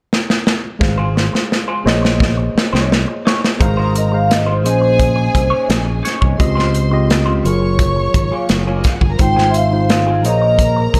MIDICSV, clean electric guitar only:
0, 0, Header, 1, 3, 480
1, 0, Start_track
1, 0, Key_signature, -4, "major"
1, 0, Tempo, 698405
1, 559, Time_signature, 4, 2, 24, 8
1, 7559, End_track
2, 0, Start_track
2, 0, Title_t, "Clean electric guitar"
2, 0, Program_c, 0, 27
2, 671, Note_on_c, 0, 72, 75
2, 679, Note_on_c, 0, 68, 63
2, 685, Note_on_c, 0, 65, 52
2, 788, Note_off_c, 0, 65, 0
2, 791, Note_off_c, 0, 68, 0
2, 795, Note_off_c, 0, 72, 0
2, 1153, Note_on_c, 0, 72, 67
2, 1158, Note_on_c, 0, 68, 66
2, 1163, Note_on_c, 0, 65, 58
2, 1273, Note_off_c, 0, 65, 0
2, 1274, Note_off_c, 0, 68, 0
2, 1279, Note_off_c, 0, 72, 0
2, 1874, Note_on_c, 0, 73, 62
2, 1880, Note_on_c, 0, 68, 57
2, 1887, Note_on_c, 0, 63, 49
2, 1992, Note_off_c, 0, 63, 0
2, 1995, Note_off_c, 0, 68, 0
2, 1999, Note_off_c, 0, 73, 0
2, 2236, Note_on_c, 0, 63, 70
2, 2243, Note_on_c, 0, 68, 72
2, 2248, Note_on_c, 0, 73, 82
2, 2344, Note_off_c, 0, 73, 0
2, 2354, Note_off_c, 0, 68, 0
2, 2360, Note_off_c, 0, 63, 0
2, 2592, Note_on_c, 0, 72, 60
2, 2599, Note_on_c, 0, 65, 58
2, 2604, Note_on_c, 0, 63, 50
2, 2704, Note_off_c, 0, 63, 0
2, 2707, Note_off_c, 0, 65, 0
2, 2712, Note_off_c, 0, 72, 0
2, 3068, Note_on_c, 0, 72, 63
2, 3075, Note_on_c, 0, 65, 69
2, 3082, Note_on_c, 0, 63, 60
2, 3181, Note_off_c, 0, 63, 0
2, 3190, Note_off_c, 0, 65, 0
2, 3196, Note_off_c, 0, 72, 0
2, 3781, Note_on_c, 0, 73, 56
2, 3788, Note_on_c, 0, 68, 52
2, 3794, Note_on_c, 0, 63, 42
2, 3896, Note_off_c, 0, 63, 0
2, 3899, Note_off_c, 0, 68, 0
2, 3903, Note_off_c, 0, 73, 0
2, 4143, Note_on_c, 0, 63, 49
2, 4150, Note_on_c, 0, 68, 55
2, 4156, Note_on_c, 0, 73, 54
2, 4247, Note_off_c, 0, 63, 0
2, 4250, Note_off_c, 0, 68, 0
2, 4253, Note_off_c, 0, 73, 0
2, 4267, Note_on_c, 0, 73, 44
2, 4276, Note_on_c, 0, 68, 43
2, 4281, Note_on_c, 0, 63, 40
2, 4369, Note_off_c, 0, 73, 0
2, 4373, Note_off_c, 0, 68, 0
2, 4376, Note_off_c, 0, 63, 0
2, 4504, Note_on_c, 0, 72, 65
2, 4512, Note_on_c, 0, 67, 61
2, 4519, Note_on_c, 0, 65, 54
2, 4621, Note_off_c, 0, 65, 0
2, 4626, Note_off_c, 0, 67, 0
2, 4634, Note_off_c, 0, 72, 0
2, 4987, Note_on_c, 0, 72, 62
2, 4995, Note_on_c, 0, 67, 61
2, 4998, Note_on_c, 0, 65, 51
2, 5111, Note_off_c, 0, 65, 0
2, 5115, Note_off_c, 0, 72, 0
2, 5118, Note_off_c, 0, 67, 0
2, 5717, Note_on_c, 0, 68, 60
2, 5723, Note_on_c, 0, 65, 58
2, 5729, Note_on_c, 0, 58, 54
2, 5833, Note_off_c, 0, 58, 0
2, 5837, Note_off_c, 0, 65, 0
2, 5840, Note_off_c, 0, 68, 0
2, 5961, Note_on_c, 0, 68, 67
2, 5965, Note_on_c, 0, 65, 67
2, 5971, Note_on_c, 0, 58, 64
2, 6068, Note_off_c, 0, 58, 0
2, 6075, Note_off_c, 0, 65, 0
2, 6077, Note_off_c, 0, 68, 0
2, 6435, Note_on_c, 0, 68, 67
2, 6444, Note_on_c, 0, 65, 57
2, 6448, Note_on_c, 0, 60, 58
2, 6549, Note_off_c, 0, 60, 0
2, 6553, Note_off_c, 0, 65, 0
2, 6559, Note_off_c, 0, 68, 0
2, 6918, Note_on_c, 0, 68, 62
2, 6926, Note_on_c, 0, 65, 65
2, 6932, Note_on_c, 0, 60, 51
2, 7037, Note_off_c, 0, 65, 0
2, 7037, Note_off_c, 0, 68, 0
2, 7048, Note_off_c, 0, 60, 0
2, 7559, End_track
3, 0, Start_track
3, 0, Title_t, "Muted clean electric guitar strokes"
3, 549, Note_on_c, 9, 29, 30
3, 618, Note_off_c, 9, 29, 0
3, 796, Note_on_c, 9, 29, 42
3, 865, Note_off_c, 9, 29, 0
3, 918, Note_on_c, 9, 29, 41
3, 987, Note_off_c, 9, 29, 0
3, 1037, Note_on_c, 9, 29, 32
3, 1105, Note_off_c, 9, 29, 0
3, 1276, Note_on_c, 9, 29, 32
3, 1345, Note_off_c, 9, 29, 0
3, 1392, Note_on_c, 9, 29, 40
3, 1461, Note_off_c, 9, 29, 0
3, 1510, Note_on_c, 9, 29, 37
3, 1579, Note_off_c, 9, 29, 0
3, 1632, Note_on_c, 9, 29, 44
3, 1701, Note_off_c, 9, 29, 0
3, 2000, Note_on_c, 9, 29, 39
3, 2069, Note_off_c, 9, 29, 0
3, 2117, Note_on_c, 9, 29, 42
3, 2185, Note_off_c, 9, 29, 0
3, 2352, Note_on_c, 9, 29, 37
3, 2421, Note_off_c, 9, 29, 0
3, 2478, Note_on_c, 9, 29, 31
3, 2546, Note_off_c, 9, 29, 0
3, 2713, Note_on_c, 9, 29, 34
3, 2781, Note_off_c, 9, 29, 0
3, 2830, Note_on_c, 9, 29, 34
3, 2899, Note_off_c, 9, 29, 0
3, 2950, Note_on_c, 9, 29, 31
3, 3019, Note_off_c, 9, 29, 0
3, 3189, Note_on_c, 9, 29, 27
3, 3258, Note_off_c, 9, 29, 0
3, 3309, Note_on_c, 9, 29, 42
3, 3377, Note_off_c, 9, 29, 0
3, 3428, Note_on_c, 9, 29, 33
3, 3497, Note_off_c, 9, 29, 0
3, 3545, Note_on_c, 9, 29, 31
3, 3614, Note_off_c, 9, 29, 0
3, 3904, Note_on_c, 9, 29, 39
3, 3973, Note_off_c, 9, 29, 0
3, 4029, Note_on_c, 9, 29, 34
3, 4098, Note_off_c, 9, 29, 0
3, 4391, Note_on_c, 9, 29, 28
3, 4459, Note_off_c, 9, 29, 0
3, 4630, Note_on_c, 9, 29, 32
3, 4698, Note_off_c, 9, 29, 0
3, 4752, Note_on_c, 9, 29, 46
3, 4821, Note_off_c, 9, 29, 0
3, 4871, Note_on_c, 9, 29, 27
3, 4939, Note_off_c, 9, 29, 0
3, 5113, Note_on_c, 9, 29, 27
3, 5181, Note_off_c, 9, 29, 0
3, 5236, Note_on_c, 9, 29, 36
3, 5305, Note_off_c, 9, 29, 0
3, 5355, Note_on_c, 9, 29, 34
3, 5424, Note_off_c, 9, 29, 0
3, 5473, Note_on_c, 9, 29, 37
3, 5541, Note_off_c, 9, 29, 0
3, 6076, Note_on_c, 9, 29, 36
3, 6145, Note_off_c, 9, 29, 0
3, 6198, Note_on_c, 9, 29, 30
3, 6267, Note_off_c, 9, 29, 0
3, 6321, Note_on_c, 9, 29, 33
3, 6390, Note_off_c, 9, 29, 0
3, 6557, Note_on_c, 9, 29, 31
3, 6626, Note_off_c, 9, 29, 0
3, 6675, Note_on_c, 9, 29, 38
3, 6744, Note_off_c, 9, 29, 0
3, 6796, Note_on_c, 9, 29, 31
3, 6865, Note_off_c, 9, 29, 0
3, 7040, Note_on_c, 9, 29, 30
3, 7109, Note_off_c, 9, 29, 0
3, 7159, Note_on_c, 9, 29, 36
3, 7227, Note_off_c, 9, 29, 0
3, 7281, Note_on_c, 9, 29, 37
3, 7349, Note_off_c, 9, 29, 0
3, 7398, Note_on_c, 9, 29, 38
3, 7467, Note_off_c, 9, 29, 0
3, 7559, End_track
0, 0, End_of_file